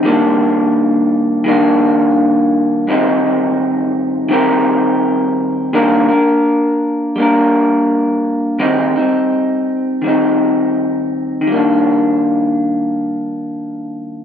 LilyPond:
\new Staff \with { instrumentName = "Clean electric guitar" } { \time 4/4 \key ees \major \tempo 4 = 84 <ees g bes d'>2 <ees g bes d'>2 | <aes, ees g c' ees'>2 <ees g c' g' bes'>2 | <ees g bes d' bes'>8 <bes d' bes'>4. <g bes d' bes'>2 | <aes, ees g c' ees'>8 <g c' ees'>4. <ees g c' ees'>2 |
<ees g bes d'>1 | }